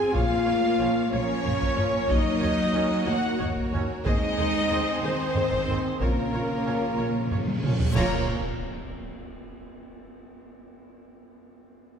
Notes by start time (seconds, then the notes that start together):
Already playing: G#3 C4 F4 G#4 G#5 C6
0.13 A#1 A#2 A#3 F4 A#4 C#5 F5, taiko
0.46 A#1 F4 C#5
0.79 A#1 F3 C#4 F4 C#5
1.12 A#1 F3 C#4 F4 C#5
1.44 A#1 F4 C#5, taiko low-mid
1.62 taiko
1.76 A#1 F3 C#4 F4 C#5, taiko low-mid
2.07 D#2 F#3 D#4 F#4 C#5 D#5, taiko
2.41 D#2 F#4 C#5
2.73 D#2 F#3 C#4 F#4 C#5
3.06 D#2 A#3 F#4 C#5 F#5
3.38 D#2 F#4 C#5, taiko low-mid
3.57 taiko
3.72 D#2 F#3 C#4 F#4 C#5, taiko low-mid
4.04 D#2 G#3 C4 D#4 G#4 C5 D#5, taiko
4.37 D#2 G#4 C5
4.69 D#2 D#3 C4 G#4 C5
5.02 D#2 D#3 G#4 C5
5.06 C4
5.35 D#2 G#4 C5, taiko low-mid
5.52 taiko
5.67 D#2 D#3 C4 G#4 C5, taiko low-mid
5.99 A#1 C#3 A#3 F4 A#4 C#5, taiko, reverse cymbal
6.15 A#2
6.23 A#2
6.30 A#1 A#2 F4 C#5
6.52 A#2
6.60 A#2 C#4
6.64 A#1 A#2 F3 F4 C#5
6.75 A#2
6.82 A#2
6.89 A#2
6.96 A#1 A#2 F4 C#5
7.04 A#2
7.12 A#2
7.19 A#2
7.27 A#1 A#2 F4 C#5
7.31 A#2, taiko low-mid
7.42 A#2
7.47 A#2, taiko high
7.56 A#2
7.63 A#1 A#2 F3 C#4 F4 C#5, taiko mid
7.71 A#2
7.79 A#2, taiko low
7.86 A#2
7.95 A#1 A#2 F3 A#3 C#4 F4 A#4 C#5 A#5, concert bass drum, crash, impact